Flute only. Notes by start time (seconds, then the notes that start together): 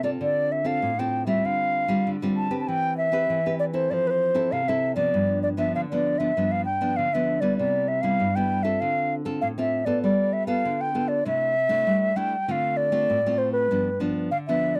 0.04 D5
0.22 D5
0.52 E5
0.67 F5
0.99 G5
1.27 E5
1.46 F5
2.37 A5
2.60 A5
2.68 G5
2.97 E5
3.60 D5
3.73 C5
3.90 C5 D5
4.07 B4 C5
4.52 F5
4.68 E5
4.96 D5
5.43 D5
5.58 E5
5.75 F5
5.91 D5
6.18 E5
6.52 F5
6.65 G5
6.96 F5
7.13 E5
7.41 D5
7.58 D5
7.88 E5
8.01 F5
8.36 G5
8.63 E5
8.80 F5
9.41 F5
9.59 E5
9.85 D5
10.03 D5
10.33 E5
10.47 F5
10.81 G5
11.08 D5
11.27 E5
12.16 G5
12.47 G5
12.51 F5
12.77 D5
13.38 C5
13.53 B4
14.31 F5
14.48 E5
14.76 D5